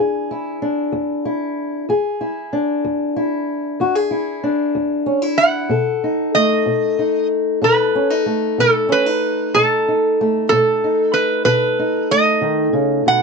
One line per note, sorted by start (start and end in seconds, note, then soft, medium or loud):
0.00 0.54 E2 medium
0.00 1.87 E3 medium
0.00 0.60 D4 medium
0.00 0.28 E4 medium
0.00 1.84 G#4 medium
0.31 1.24 E4 medium
0.62 1.85 D4 medium
0.92 1.50 E2 medium
1.25 1.85 E4 medium
1.89 2.46 E2 medium
1.89 3.80 G#4 medium
2.21 3.15 E4 medium
2.53 4.42 D4 medium
2.84 3.41 E2 medium
3.16 4.10 E4 medium
3.80 4.37 E2 medium
3.80 3.95 F#4 medium
3.95 5.70 G#4 medium
4.11 5.06 E4 medium
4.44 5.67 D4 medium
4.75 5.32 E2 medium
5.06 5.22 C#4 medium
5.22 5.70 E4 soft
5.38 6.34 F#5 medium
5.69 6.28 B2 medium
5.69 7.62 A4 medium
6.04 6.98 D#4 medium
6.35 8.26 A3 medium
6.35 7.27 D#5 medium
6.66 7.24 B2 medium
6.99 7.95 D#4 medium
7.62 8.20 B2 medium
7.62 9.58 A4 medium
7.62 8.62 B4 medium
7.95 8.10 C#4 medium
8.10 8.88 D#4 soft
8.26 10.21 A3 medium
8.58 9.16 B2 medium
8.58 8.92 A4 medium
8.89 9.06 C#4 medium
8.89 9.57 B4 medium
9.06 9.54 D#4 soft
9.54 10.12 B2 medium
9.54 9.87 D#4 medium
9.54 10.48 A4 medium
9.88 10.83 D#4 soft
10.21 12.11 A3 medium
10.49 11.09 B2 medium
10.49 11.16 A4 medium
10.84 11.78 D#4 medium
11.14 11.44 B4 medium
11.45 12.03 B2 medium
11.45 13.22 A4 medium
11.45 12.12 B4 medium
11.79 13.22 D#4 medium
12.11 13.22 A3 medium
12.11 13.03 D#5 medium
12.41 12.73 D#3 medium
12.73 13.06 C#3 medium
13.06 13.22 B2 medium
13.06 13.22 F#5 medium